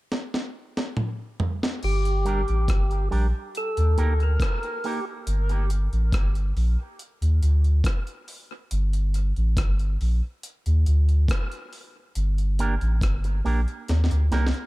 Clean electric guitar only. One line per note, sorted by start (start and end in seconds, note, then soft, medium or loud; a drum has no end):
2.25 2.40 G3 medium
2.25 2.40 D4 medium
2.25 2.41 G4 medium
2.25 2.41 A#4 medium
3.11 3.26 G3 medium
3.11 3.26 D4 medium
3.11 3.26 G4 medium
3.11 3.26 A#4 medium
3.97 4.12 A#3 medium
3.97 4.12 D#4 medium
3.97 4.13 G4 medium
3.97 4.13 A#4 medium
4.20 muted clean electric guitar stroke soft
4.84 4.99 A#3 medium
4.84 4.99 D#4 medium
4.84 4.99 G4 medium
4.84 4.99 A#4 medium
12.59 12.74 A#3 medium
12.59 12.74 D4 medium
12.59 12.74 G4 medium
12.59 12.74 A#4 medium
13.25 muted clean electric guitar stroke medium
13.45 13.59 A#3 medium
13.45 13.60 D4 medium
13.45 13.60 G4 medium
13.45 13.60 A#4 medium
14.31 14.46 A#3 medium
14.31 14.46 D#4 medium
14.31 14.46 G4 medium
14.31 14.46 A#4 loud